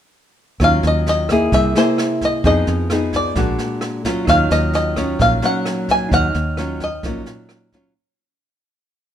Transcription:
0.60 0.82 D#2 medium
0.60 1.50 D#3 soft
0.60 1.26 F#3 soft
0.60 1.26 C#4 medium
0.60 1.26 F4 medium
0.60 kick soft
0.60 cross-stick soft
0.60 snare soft
0.64 0.86 F5 medium
0.83 1.48 D#2 medium
0.83 snare soft
0.87 1.08 D#5 medium
1.07 1.54 D#5 medium
1.07 snare soft
1.29 1.72 A#3 soft
1.29 1.73 E4 medium
1.29 1.73 G#4 medium
1.29 kick soft
1.29 cross-stick medium
1.29 snare soft
1.52 1.73 C2 medium
1.52 2.42 C3 medium
1.52 1.77 E5 medium
1.52 kick soft
1.52 snare soft
1.75 2.43 A#3 medium
1.75 2.43 E4 medium
1.75 2.43 G#4 medium
1.75 2.19 C5 medium
1.75 snare soft
1.98 cross-stick soft
1.98 snare soft
2.21 2.45 D#5 medium
2.21 kick soft
2.21 snare soft
2.44 2.65 F2 medium
2.44 3.34 F3 medium
2.44 2.87 B3 soft
2.44 2.87 D#4 soft
2.44 2.87 G#4 medium
2.44 3.16 D#5 medium
2.44 kick medium
2.44 snare soft
2.67 3.32 F2 medium
2.67 snare soft
2.90 3.33 B3 medium
2.90 3.33 D#4 medium
2.90 3.33 G#4 medium
2.90 cross-stick medium
2.90 snare soft
3.13 4.02 D5 medium
3.13 kick soft
3.13 snare soft
3.35 3.57 A#1 medium
3.35 4.26 A#2 soft
3.35 4.01 G#3 soft
3.35 4.02 D4 soft
3.35 4.02 F#4 medium
3.35 kick medium
3.35 snare soft
3.58 snare soft
3.81 cross-stick medium
3.81 snare soft
4.05 4.93 F#3 medium
4.05 4.93 C#4 medium
4.05 4.94 F4 medium
4.05 kick soft
4.05 snare soft
4.25 4.49 D#2 medium
4.25 5.18 D#3 medium
4.25 6.07 D#4 soft
4.25 kick soft
4.25 cross-stick medium
4.25 snare soft
4.29 6.09 C#5 soft
4.29 4.50 F5 medium
4.29 6.10 F6 medium
4.50 5.16 D#2 medium
4.50 4.74 D#5 medium
4.50 snare soft
4.73 5.21 D#5 medium
4.73 snare soft
4.96 5.39 F#3 medium
4.96 5.39 C#4 medium
4.96 5.39 F4 medium
4.96 kick soft
4.96 cross-stick soft
4.96 snare soft
5.19 5.41 A#1 medium
5.19 6.09 A#2 medium
5.19 5.44 F5 medium
5.19 kick medium
5.19 snare soft
5.42 6.31 F#3 medium
5.42 6.31 C#4 medium
5.42 5.87 F#5 medium
5.42 snare soft
5.65 cross-stick soft
5.65 snare soft
5.89 6.13 G#5 medium
5.89 kick soft
5.89 snare soft
6.09 6.33 D#2 medium
6.09 7.01 D#3 soft
6.09 7.90 D#4 soft
6.09 7.92 C#5 soft
6.09 kick medium
6.09 snare soft
6.14 6.83 F#5 medium
6.14 7.93 F6 medium
6.34 6.99 D#2 medium
6.34 snare soft
6.57 6.87 F#3 soft
6.57 6.88 C#4 soft
6.57 6.88 F4 medium
6.57 cross-stick medium
6.57 snare soft
6.80 7.70 D#5 medium
6.80 kick soft
6.80 snare soft
7.03 7.25 A#1 medium
7.03 7.93 A#2 soft
7.03 7.69 F#3 medium
7.03 7.69 C#4 medium
7.03 7.69 F4 soft
7.03 kick medium
7.03 snare soft
7.26 snare soft
7.49 cross-stick medium
7.49 snare soft
7.72 7.92 F#3 medium
7.72 7.92 C#4 medium
7.72 7.93 F4 medium
7.72 kick soft
7.72 snare soft

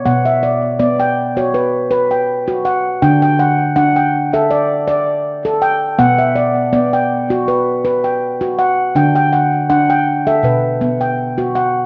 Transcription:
0.00 0.26 C#5 medium
0.05 2.98 B2 medium
0.05 0.43 B3 medium
0.05 0.63 F#5 medium
0.25 0.80 E5 medium
0.43 0.78 D5 medium
0.79 1.17 B3 medium
0.79 1.37 D5 medium
1.00 1.54 G5 medium
1.37 1.74 F#4 medium
1.37 1.91 C#5 medium
1.54 1.90 B4 medium
1.91 2.28 B4 medium
2.11 2.65 G5 soft
2.48 2.85 F#4 medium
2.65 3.22 F#5 medium
3.02 5.95 D3 medium
3.02 3.39 D4 medium
3.02 3.21 G5 medium
3.22 3.76 G5 medium
3.39 3.75 F#5 medium
3.76 4.13 D4 medium
3.76 4.33 F#5 medium
3.96 4.50 G5 medium
4.33 4.71 A4 medium
4.33 4.88 E5 medium
4.51 4.86 D5 medium
4.88 5.25 D5 medium
5.45 5.82 A4 medium
5.62 6.19 G5 medium
5.99 8.91 B2 medium
5.99 6.36 B3 medium
5.99 6.56 F#5 medium
6.18 6.73 E5 medium
6.35 6.72 D5 medium
6.73 7.10 B3 medium
6.73 7.30 D5 medium
6.93 7.47 G5 medium
7.30 7.67 F#4 medium
7.48 7.83 B4 medium
7.85 8.21 B4 medium
8.04 8.58 G5 soft
8.41 8.78 F#4 medium
8.59 9.15 F#5 medium
8.95 10.40 D3 medium
8.95 9.32 D4 medium
8.95 9.14 G5 medium
9.15 9.69 G5 medium
9.33 9.68 F#5 medium
9.70 10.07 D4 medium
9.70 10.26 F#5 medium
9.90 10.44 G5 medium
10.27 10.44 A4 medium
10.27 10.64 E5 medium
10.43 11.86 B2 medium
10.43 11.01 B4 medium
10.81 11.18 B3 medium
11.01 11.55 G5 soft
11.38 11.75 F#4 medium
11.55 11.86 F#5 medium

